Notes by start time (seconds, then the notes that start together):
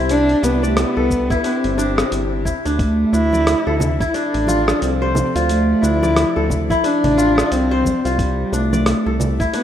Already playing: C2 C3 D4 E4 G4 C5 E5
0.09 D4, open hi-hat, shaker
0.29 open hi-hat
0.43 C2 B3 D4, shaker
0.63 A3 D5, shaker
0.77 B3, cross-stick, open hi-hat, shaker
0.97 C2 A4
1.10 kick, shaker
1.30 E4, kick, open hi-hat, shaker
1.44 C4 D4, open hi-hat, shaker
1.64 G1, open hi-hat
1.78 D4, shaker
1.98 cross-stick, open hi-hat, shaker
2.12 G1, open hi-hat, shaker
2.45 E4, kick, shaker
2.65 D2 D4, open hi-hat, shaker
2.79 F3 A3 A4 D5, kick, open hi-hat, shaker
3.13 D2 D4 E4, shaker
3.33 D5, high conga, shaker
3.47 cross-stick, open hi-hat, shaker
3.67 D2 A4
3.80 low conga, shaker
4.00 E4, kick, open hi-hat, shaker
4.08 E4
4.14 D4, open hi-hat, shaker
4.34 A1, open hi-hat
4.47 F4, high conga, shaker
4.68 cross-stick, shaker
4.81 C2 C4, open hi-hat, shaker
5.02 C5
5.15 low conga, shaker
5.35 D2 F4, open hi-hat, shaker
5.49 A3, open hi-hat, shaker
5.82 D2 D4 E4, shaker
6.03 D5, high conga, shaker
6.16 cross-stick, open hi-hat, shaker
6.36 D2 A4
6.50 kick, low conga, shaker
6.70 E4, kick, open hi-hat, high conga, shaker
6.84 D4, open hi-hat, shaker
7.04 A1, open hi-hat, low conga
7.18 F4, shaker
7.38 cross-stick, shaker
7.52 C2 C4, open hi-hat, shaker
7.71 C5
7.85 kick, high conga, shaker
8.05 C2 F4, open hi-hat, shaker
8.18 C3 G3 E4 G4 E5, kick, open hi-hat, shaker
8.52 C2 A3 D4, shaker
8.73 D5, high conga, shaker
8.86 cross-stick, open hi-hat, shaker
9.06 C2 A4
9.20 low conga, shaker
9.40 E4, kick, open hi-hat, shaker
9.53 B3 D4, open hi-hat, shaker